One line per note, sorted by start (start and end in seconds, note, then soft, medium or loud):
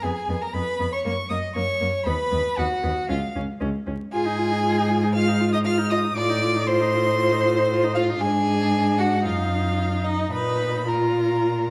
0.02 0.11 F2 soft
0.02 0.12 B3 medium
0.02 0.43 G#4 medium
0.02 0.43 G#5 medium
0.28 0.36 F2 medium
0.28 0.38 B3 soft
0.41 0.54 A#4 medium
0.41 0.55 A#5 medium
0.53 0.62 F2 medium
0.53 0.63 B3 medium
0.53 0.92 B4 medium
0.53 0.94 B5 medium
0.80 0.88 F2 soft
0.80 0.88 B3 soft
0.93 1.05 C#5 medium
0.93 1.04 C#6 medium
1.05 1.13 F#2 soft
1.05 1.13 A#3 medium
1.05 1.14 C#5 medium
1.05 1.29 C#6 medium
1.30 1.38 F#2 medium
1.30 1.38 A#3 soft
1.30 1.55 D#5 medium
1.30 1.38 D#6 medium
1.55 1.64 F#2 medium
1.55 1.63 A#3 medium
1.55 2.09 C#5 medium
1.55 2.05 C#6 medium
1.81 1.89 F#2 medium
1.81 1.89 A#3 soft
2.05 2.15 D#2 medium
2.05 2.14 B3 medium
2.05 2.60 B4 medium
2.05 2.59 B5 medium
2.32 2.40 D#2 medium
2.32 2.40 B3 medium
2.57 2.66 D#2 medium
2.57 2.66 B3 medium
2.57 3.09 F#4 medium
2.57 3.08 F#5 medium
2.83 2.92 D#2 medium
2.83 2.91 B3 medium
3.09 3.18 C#2 medium
3.09 3.17 C#4 medium
3.09 3.18 F4 medium
3.09 3.34 F5 medium
3.35 3.44 C#2 medium
3.35 3.43 C#4 medium
3.60 3.69 C#2 medium
3.60 3.69 C#4 medium
3.87 3.95 C#2 medium
3.87 3.95 C#4 medium
4.12 6.12 G#2 medium
4.12 4.27 F4 medium
4.12 5.11 G#4 medium
4.12 5.11 G#5 loud
4.25 4.40 D#4 medium
4.38 4.53 F4 medium
4.51 4.64 D#4 medium
4.64 4.79 F4 medium
4.77 4.91 D#4 medium
4.90 5.05 F4 medium
5.03 5.15 D#4 medium
5.14 5.30 F4 medium
5.14 5.52 F5 medium
5.14 5.52 F6 medium
5.28 5.42 D#4 medium
5.40 5.54 F4 medium
5.53 5.65 D#4 medium
5.53 5.59 D#5 medium
5.53 5.58 D#6 medium
5.65 5.79 F4 medium
5.65 5.73 F5 medium
5.65 5.92 F6 loud
5.78 5.92 D#4 medium
5.90 6.05 F4 medium
5.90 5.99 D#5 medium
5.90 6.18 D#6 medium
6.04 6.16 D#4 medium
6.16 8.17 A2 medium
6.16 6.31 F4 medium
6.16 6.68 D5 loud
6.16 6.68 D6 medium
6.30 6.44 D#4 medium
6.43 6.57 F4 medium
6.55 6.68 D#4 medium
6.67 6.82 F4 medium
6.67 7.97 C5 medium
6.67 7.94 C6 loud
6.81 6.95 D#4 medium
6.94 7.08 F4 medium
7.06 7.19 D#4 medium
7.20 7.34 F4 medium
7.32 7.46 D#4 medium
7.45 7.59 F4 medium
7.58 7.70 D#4 medium
7.71 7.85 F4 medium
7.84 7.98 D#4 medium
7.94 8.22 F4 medium
7.94 8.11 F4 medium
7.94 8.02 F5 medium
8.09 8.21 D#4 medium
8.21 9.26 G#2 medium
8.21 9.21 D4 medium
8.21 9.01 G#4 loud
8.21 9.00 G#5 medium
8.99 9.27 F#4 medium
8.99 9.24 F#5 medium
9.25 10.32 F#2 medium
9.25 10.30 D#4 medium
9.25 10.04 F4 medium
9.25 10.05 F5 medium
10.04 10.32 D#4 medium
10.04 10.32 D#5 medium
10.32 11.70 A#2 medium
10.32 10.87 D#4 medium
10.32 10.87 B4 medium
10.32 10.89 B5 medium
10.88 11.70 F4 medium
10.88 11.70 A#4 medium
10.88 11.70 A#5 medium